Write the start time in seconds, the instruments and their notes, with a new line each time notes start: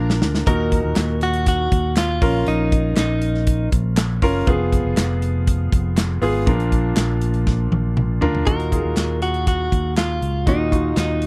Already playing: fingered electric bass A#1, grand piano A#2 F3 A#3 D4 F4 A#4, violin section A#4 A#5
0.10 snare
0.22 fingered electric bass D2, snare
0.35 snare
0.47 fingered electric bass D#2, grand piano A#2 D#4 F#4 A#4, clean electric guitar A#4, kick, closed hi-hat
0.72 kick, closed hi-hat
0.84 fingered electric bass D#2
0.96 fingered electric bass D#2, snare, clap, closed hi-hat
1.21 clean electric guitar F#4, closed hi-hat
1.33 closed hi-hat
1.46 clean electric guitar F#4, kick, closed hi-hat
1.72 fingered electric bass D#2, kick, closed hi-hat
1.96 clean electric guitar F4, snare, clap, closed hi-hat
2.21 fingered electric bass A#1, grand piano C#4 F4 A#4, kick, open hi-hat
2.47 fingered electric bass A#1, clean electric guitar D#4, closed hi-hat
2.72 kick, closed hi-hat
2.96 fingered electric bass A#1, clean electric guitar D#4, snare, clap, closed hi-hat
3.22 closed hi-hat
3.35 snare
3.47 kick, closed hi-hat
3.72 fingered electric bass A#1, kick, closed hi-hat
3.97 snare, clap, closed hi-hat
4.22 fingered electric bass F#1, grand piano C#4 F4 A#4, kick, open hi-hat
4.47 fingered electric bass F1, grand piano F3 B3 F4 G#4, kick, closed hi-hat
4.72 kick, closed hi-hat
4.85 fingered electric bass F1
4.97 fingered electric bass F1, snare, clap, closed hi-hat
5.22 closed hi-hat
5.47 kick, closed hi-hat
5.72 fingered electric bass F1, kick, closed hi-hat
5.97 snare, clap, closed hi-hat
6.21 fingered electric bass G#1, grand piano B3 F4 G#4, open hi-hat
6.46 fingered electric bass A#1, grand piano A#2 F3 D4 F4 A#4, kick, closed hi-hat
6.60 closed hi-hat
6.72 kick, closed hi-hat
6.97 fingered electric bass A#1, snare, clap, closed hi-hat
7.21 closed hi-hat
7.34 closed hi-hat
7.47 kick, snare
7.72 fingered electric bass A#1, high tom
7.97 mid tom
8.21 fingered electric bass D2, grand piano D4 F4 A#4, floor tom
8.35 floor tom
8.46 fingered electric bass D#2, grand piano A#2 D#4 F4 F#4, clean electric guitar A#4, kick, closed hi-hat
8.60 closed hi-hat
8.71 grand piano D#4 F4 G#4, kick, closed hi-hat
8.84 fingered electric bass D#2
8.97 fingered electric bass D#2, snare, clap, closed hi-hat
9.22 clean electric guitar F#4, closed hi-hat
9.34 closed hi-hat
9.47 clean electric guitar F#4, kick, closed hi-hat
9.72 fingered electric bass D#2, kick, closed hi-hat
9.97 clean electric guitar F4, snare, clap, closed hi-hat
10.21 fingered electric bass C#2, closed hi-hat
10.46 fingered electric bass D#2, grand piano A#2 D#4 F4 F#4, clean electric guitar D#4, kick, closed hi-hat
10.71 grand piano D#4 F4 F#4, kick, closed hi-hat
10.97 fingered electric bass D#2, clean electric guitar D#4, snare, clap, closed hi-hat
11.22 closed hi-hat